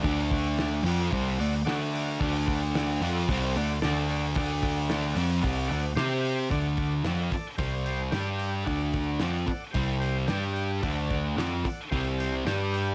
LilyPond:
<<
  \new Staff \with { instrumentName = "Transistor combo organ" } { \time 4/4 \key d \mixolydian \tempo 4 = 111 <a' d'' fis''>8 <a' d'' fis''>8 <a' d'' fis''>8 <a' d'' fis''>8 <a' d'' fis''>8 <a' d'' fis''>8 <a' d'' fis''>8 <a' d'' fis''>8 | <a' d'' fis''>8 <a' d'' fis''>8 <a' d'' fis''>8 <a' d'' fis''>8 <a' d'' fis''>8 <a' d'' fis''>8 <a' d'' a''>8 <a' d'' fis''>8 | <a' d'' fis''>8 <a' d'' fis''>8 <a' d'' fis''>8 <a' d'' fis''>8 <a' d'' fis''>8 <a' d'' fis''>8 <g' c'' g''>8 <g' c'' g''>8 | <a' d'' fis''>8 <a' d'' fis''>8 <a' d'' fis''>8 <a' d'' a''>8 <g' c'' g''>8 <g' c'' g''>8 <g' d'' g''>8 <g' d'' g''>8 |
<a' d'' fis''>8 <a' d'' fis''>8 <a' d'' fis''>8 <a' d'' fis''>8 <g' c'' g''>8 <g' c'' g''>8 <g' d'' g''>8 <g' d'' g''>8 | <a' d'' fis''>8 <a' d'' fis''>8 <a' d'' fis''>8 <a' d'' fis''>8 <g' c'' g''>8 <g' c'' g''>8 <g' d'' g''>8 <g' d'' g''>8 | }
  \new Staff \with { instrumentName = "Distorted electric guitar" } { \time 4/4 \key d \mixolydian <d a d'>4. <f c' f'>8 <c g c'>8 <d a>8 <d a d'>4 | <d a d'>4. <f c' f'>8 <c g c'>8 <d a>8 <d a d'>4 | <d a d'>4. <f c' f'>8 <c g c'>8 <d a>8 <c' g' c''>4 | <d a d'>4 <f c' f'>8 r8 <c g c'>4 <g d' g'>4 |
<d a d'>4 <f c' f'>8 r8 <c g c'>4 <g d' g'>4 | <d a d'>4 <f c' f'>8 r8 <c g c'>4 <g d' g'>4 | }
  \new Staff \with { instrumentName = "Picked electric bass" } { \clef bass \time 4/4 \key d \mixolydian d,4. f,8 c,8 d,8 d,4 | d,4. f,8 c,8 d,8 d,4 | d,4. f,8 c,8 d,8 c4 | d,4 f,8 r8 c,4 g,4 |
d,4 f,8 r8 c,4 g,4 | d,4 f,8 r8 c,4 g,4 | }
  \new DrumStaff \with { instrumentName = "Drums" } \drummode { \time 4/4 <hho bd>8 <hho bd>8 <hho sn>8 hho8 <hho bd>8 hho8 <hho sn>8 hho8 | <hho bd>8 <hho bd>8 <hho sn>8 hho8 <hho bd>8 hho8 <hho sn>8 hho8 | <hho bd>8 <hho bd>8 <hho sn>8 hho8 <hho bd>8 hho8 <hho sn>8 hho8 | <hho bd>8 <hho bd>8 <hho sn>8 <hho bd>8 <hho bd>8 hho8 <hho sn>8 hho8 |
<hho bd>8 <hho bd>8 <hho sn>8 <hho bd>8 <hho bd>8 hho8 <hho sn>8 hho8 | <hho bd>8 <hho bd>8 <hho sn>8 <hho bd>8 <hho bd>8 hho8 <hho sn>8 hho8 | }
>>